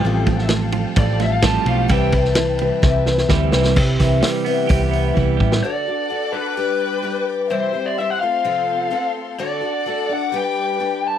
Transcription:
Already playing: string section A4 F5 G5 A5, lead electric guitar G5
0.04 picked electric bass A1, clean electric guitar A2 F3, twelve-string acoustic guitar A2 F3 G3 C4 F4 A4
0.26 clean electric guitar A2 F3, twelve-string acoustic guitar G3 C4 F4 A4, kick, ride
0.38 snare
0.49 clean electric guitar A2 F3, snare, ride
0.72 clean electric guitar A2 F3, ride
0.96 picked electric bass A1, twelve-string acoustic guitar A2 F3 G3 C4 F4 A4, clean electric guitar A2 F3, lead electric guitar D5, kick, ride
1.20 clean electric guitar A2 F3, twelve-string acoustic guitar G3 C4 F4 A4, lead electric guitar E5, snare, ride
1.33 lead electric guitar F5
1.42 clean electric guitar A2 F3 G3, twelve-string acoustic guitar G3 C4 F4, lead electric guitar A5, kick, snare, ride
1.46 twelve-string acoustic guitar A4
1.66 picked electric bass B1, clean electric guitar A2 F3 G3, lead electric guitar F5, ride
1.88 picked electric bass C2, twelve-string acoustic guitar C3 E3 G3 C4 E4 B4, clean electric guitar C3 E3 G3, string section B4 E5, lead electric guitar G5, kick, ride
2.12 clean electric guitar C3 E3, twelve-string acoustic guitar G3 C4 E4 B4, kick, ride
2.25 snare
2.35 clean electric guitar C3 E3, snare, ride
2.59 clean electric guitar C3 E3, twelve-string acoustic guitar G3 C4 E4 B4, ride
2.82 picked electric bass C2, twelve-string acoustic guitar C3 E3 G3 C4 E4 B4, clean electric guitar C3 E3, kick, snare
3.06 clean electric guitar C3 E3, twelve-string acoustic guitar G3 C4 E4 B4, snare
3.18 snare
3.29 picked electric bass D2, clean electric guitar C3 E3 G3, twelve-string acoustic guitar G3 C4 E4 B4, kick, snare
3.52 picked electric bass C2, clean electric guitar C3 E3 G3, twelve-string acoustic guitar G3 C4 E4 B4, snare
3.64 snare
3.75 picked electric bass C2, twelve-string acoustic guitar C3 E3 G3 C4 E4 B4, clean electric guitar C3, string section G4 E5 G5, kick, crash
3.99 picked electric bass C2, clean electric guitar E3, kick, snare, open hi-hat
4.21 clean electric guitar G3, twelve-string acoustic guitar G3 C4 E4, snare, open hi-hat
4.25 twelve-string acoustic guitar B4
4.45 twelve-string acoustic guitar G3 C4 E4 B4, clean electric guitar B3, open hi-hat
4.67 picked electric bass C2, twelve-string acoustic guitar C3 E3 G3 E4 B4, clean electric guitar G4, kick, open hi-hat
4.91 clean electric guitar B3, open hi-hat
5.14 picked electric bass C2, clean electric guitar E3, twelve-string acoustic guitar G3 E4 B4, kick
5.37 picked electric bass A1, clean electric guitar G3, kick
5.52 snare
5.61 twelve-string acoustic guitar D3 A3 D4 F#4 A4, string section A4 D5 F#5 D6, lead electric guitar D5
5.87 twelve-string acoustic guitar D4 F#4 A4
6.10 twelve-string acoustic guitar A3 D4 F#4 A4
6.32 twelve-string acoustic guitar D4 F#4 A4, lead electric guitar B4
6.57 twelve-string acoustic guitar G3 D4 G4 B4, string section B4 G5
7.02 twelve-string acoustic guitar G3 D4 G4 B4
7.49 twelve-string acoustic guitar C3 E3 G3 C4 E4 C5, string section G4 C5 E5 C6, lead electric guitar C5
7.73 twelve-string acoustic guitar G3 C4 E4 C5
7.86 lead electric guitar D5
7.98 twelve-string acoustic guitar G3 C4 E4 C5, lead electric guitar E5
8.10 lead electric guitar F#5
8.20 twelve-string acoustic guitar A3 C4 F4 A4, string section C4 A4 F5, lead electric guitar F5
8.44 twelve-string acoustic guitar C3 F3 A3 C4 F4 A4
8.90 twelve-string acoustic guitar A3 C4 F4 A4
9.38 twelve-string acoustic guitar D3 A3 D4 F#4 A4, string section A4 D5 F#5 D6, lead electric guitar D5
9.61 twelve-string acoustic guitar D4 F#4 A4
9.86 twelve-string acoustic guitar A3 D4 F#4 A4
10.09 twelve-string acoustic guitar D4 F#4 A4, lead electric guitar F#5
10.31 twelve-string acoustic guitar G3 D4 G4 B4, string section B4 G5
10.37 lead electric guitar G5
10.80 twelve-string acoustic guitar G3 D4 G4 B4
11.07 lead electric guitar A5

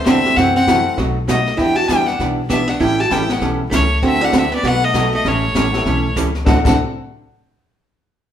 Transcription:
0.06 upright bass E2, hollow-body jazz guitar D3 A3 C4 F#4 A4, upright piano C4 D4 E4 F#4 A4, fiddle E5, kick, snare, hi-hat pedal
0.25 snare
0.36 upright bass F#2, hollow-body jazz guitar C3 E3 A3 C4 E4 F#4, fiddle F#5, brush sweep, kick, snare
0.56 hollow-body jazz guitar C4, fiddle F#5
0.67 hollow-body jazz guitar C3 E3 A3 E4 F#4, upright piano A3 C4 E4 F#4 A4, kick, snare, hi-hat pedal
0.97 upright bass B1, hollow-body jazz guitar B2 F#3 A3 D#4 F#4, brush sweep, kick, snare
1.28 hollow-body jazz guitar B2 F#3 A3 D#4 F#4, fiddle D#5, kick, snare, hi-hat pedal
1.46 snare
1.57 upright bass E2, hollow-body jazz guitar E3 B3 D4 E4 G4, fiddle G5, brush sweep, kick, snare
1.75 hollow-body jazz guitar F#4, fiddle A5
1.87 hollow-body jazz guitar E3 B3 D4 E4, upright piano G3 B3 D4 E4 G4, fiddle G5, kick, snare, hi-hat pedal
1.92 hollow-body jazz guitar G4
2.06 hollow-body jazz guitar D4, fiddle F#5, snare
2.19 upright bass B1, hollow-body jazz guitar E3 B3 D4 G4, brush sweep, kick, snare
2.49 hollow-body jazz guitar E3 B3 D4 G4, fiddle E5, kick, snare, hi-hat pedal
2.68 hollow-body jazz guitar D4, fiddle F#5, snare
2.80 upright bass A1, hollow-body jazz guitar E3 G3 C#4 E4 A4, fiddle G5, brush sweep, kick, snare
3.00 hollow-body jazz guitar F#4, fiddle A5
3.10 upright bass A1, hollow-body jazz guitar E3 G3 C#4 E4 A4, upright piano A3 B3 C#4 E4 G4, fiddle G5, kick, snare, hi-hat pedal
3.29 hollow-body jazz guitar C#4, fiddle F#5, snare
3.41 upright bass B1, hollow-body jazz guitar E3 G3 C#4 E4 A4, brush sweep, kick, snare
3.71 upright bass C#2, hollow-body jazz guitar E3 G3 A3 C#4 E4 A4, fiddle C#5, kick, snare, hi-hat pedal
4.02 upright bass D2, hollow-body jazz guitar D3 A3 C4 F#4 A4, fiddle E5, brush sweep, kick, snare
4.20 upright piano A3 C4 D4 E4 F#4, hollow-body jazz guitar D4
4.24 fiddle F#5
4.32 hollow-body jazz guitar D3 A3 C4 F#4 A4, kick, snare, hi-hat pedal
4.38 fiddle E5
4.51 hollow-body jazz guitar B3, fiddle D5, snare
4.63 upright bass B1, hollow-body jazz guitar B2 F#3 A3 B3 D#4 F#4, brush sweep, kick, snare
4.67 fiddle F#5
4.83 hollow-body jazz guitar A3, fiddle D#5
4.93 hollow-body jazz guitar B2 F#3 A3 D#4 F#4, upright piano A3 B3 D#4 F#4 A4, kick, snare, hi-hat pedal
5.14 hollow-body jazz guitar A3, fiddle D#5
5.25 upright bass A1, hollow-body jazz guitar E3 G3 A3 C#4 E4 A4, fiddle C#5, brush sweep, kick, snare
5.55 upright bass A1, hollow-body jazz guitar E3 G3 C#4 E4 A4, kick, snare, hi-hat pedal
5.72 upright piano B3 C#4 E4 G4 A4, snare
5.86 upright bass B1, hollow-body jazz guitar E3 G3 C#4 E4 A4, brush sweep, kick, snare
6.16 upright bass C#2, hollow-body jazz guitar E3 G3 C#4 E4 A4, kick, snare, hi-hat pedal
6.35 snare
6.45 upright bass D2, hollow-body jazz guitar D3 A3 C4 D4 F#4 A4, upright piano C4 D4 E4 F#4 A4, fiddle F#5, kick, snare
6.64 upright bass D2, hollow-body jazz guitar D3 A3 C4 D4 F#4 A4, upright piano C4 D4 E4 F#4 A4, fiddle F#5, kick, snare, crash

